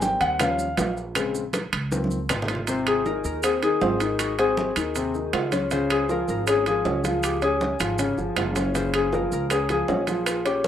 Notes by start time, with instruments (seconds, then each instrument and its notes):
Already playing: upright bass G#1, grand piano G3 A#3 C4
0.02 grand piano G5, high bongo, high conga, maracas
0.21 upright bass D#2, grand piano F#5, high conga, high timbale, maracas
0.39 grand piano F3 G3 C#4 F5, high bongo, high conga, low conga, high timbale, claves, maracas
0.59 high bongo, high conga, maracas
0.77 upright bass A#1, high bongo, low bongo, high conga, high timbale, low timbale, maracas
0.97 high bongo, maracas
1.15 grand piano C#3 G#3 C4, high bongo, high conga, high timbale, claves, maracas
1.35 high bongo, high conga, maracas
1.53 high bongo, high conga, high timbale, maracas
1.73 upright bass C#2, high bongo, high conga, high timbale, claves, maracas
1.91 grand piano D#3 F3 C4, high bongo, high conga, maracas
2.04 high conga
2.11 maracas
2.29 upright bass G#1, harp F4, high bongo, low bongo, low conga, high timbale, claves, maracas
2.42 low conga
2.48 harp F4, high bongo, high timbale, maracas
2.55 low conga
2.67 grand piano C3 C4, harp C5, high conga, high timbale, maracas
2.87 harp G#4, high conga, high timbale, claves, maracas
3.05 grand piano D#3 D#4, harp A#4, high conga, low timbale, maracas
3.25 upright bass D#2, harp A#4, high conga, maracas
3.43 grand piano C4 C5, harp G#4, high conga, high timbale, claves, maracas
3.63 grand piano D#3 D#4, harp G#4, high conga, high timbale, maracas
3.81 upright bass G#1, grand piano C4 C5, high conga, low timbale, maracas
4.00 grand piano D#3 D#4, high timbale, maracas
4.19 harp F#4, high conga, high timbale, claves, maracas
4.39 grand piano C4 C5, harp G#4, high conga, high timbale, maracas
4.57 high conga, low timbale, maracas
4.76 upright bass D#2, grand piano D#3 D#4, high conga, high timbale, claves, maracas
4.95 grand piano C3 C4, high conga, high timbale, maracas
5.14 grand piano D#3 D#4, high conga, maracas
5.33 upright bass C#2, harp F4, high conga, high timbale, low timbale, claves, maracas
5.52 grand piano C#4 C#5, harp F4, high conga, high timbale, maracas
5.71 grand piano C#3 C#4, harp C5, high timbale, maracas
5.90 harp G#4, high conga, high timbale, claves, maracas
6.09 grand piano F3 F4, harp A#4, high conga, low timbale, maracas
6.28 upright bass G#1, harp A#4, high conga, maracas
6.47 grand piano C#4 C#5, harp G#4, high conga, high timbale, claves, maracas
6.66 grand piano F3 F4, harp G#4, high conga, high timbale, maracas
6.85 upright bass C#2, grand piano C#4 C#5, high conga, low timbale, maracas
7.04 grand piano F3 F4, high conga, high timbale, maracas
7.23 harp G4, high conga, high timbale, claves, maracas
7.42 grand piano C#4 C#5, harp G#4, high conga, high timbale, maracas
7.61 high conga, low timbale, maracas
7.80 upright bass G#1, grand piano F3 F4, high conga, high timbale, claves, maracas
7.99 grand piano C#3 C#4, high conga, high timbale, maracas
8.18 upright bass G1, grand piano F3 F4, high conga, maracas
8.36 upright bass F#1, harp F4, high conga, high timbale, low timbale, claves, maracas
8.55 grand piano C#4 C#5, harp F4, high conga, high timbale, maracas
8.74 grand piano C#3 C#4, harp C5, high bongo, high conga, high timbale, maracas
8.94 harp G#4, high conga, high timbale, claves, maracas
9.13 grand piano F3 F4, harp A#4, high bongo, high conga, low timbale, maracas
9.32 upright bass C#2, harp A#4, high bongo, high conga, maracas
9.50 grand piano C#4 C#5, harp G#4, high bongo, high conga, high timbale, claves, maracas
9.69 grand piano F3 F4, harp G#4, high bongo, high conga, high timbale, maracas
9.88 upright bass A#1, grand piano C#4 C#5, high bongo, low bongo, high conga, low timbale, maracas
10.07 grand piano F3 F4, high bongo, high conga, high timbale, maracas
10.26 harp F4, high bongo, high conga, high timbale, claves, maracas
10.45 grand piano C#4 C#5, harp G4, high conga, high timbale, maracas
10.64 high bongo, high conga, low timbale